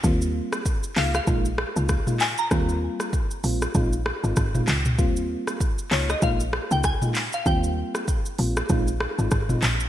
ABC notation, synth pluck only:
X:1
M:4/4
L:1/16
Q:"Swing 16ths" 1/4=97
K:Ebmix
V:1 name="Synth pluck"
z6 f f6- f a b- | b8- b3 z4 z | z6 d e f3 g a3 f | g8 z8 |]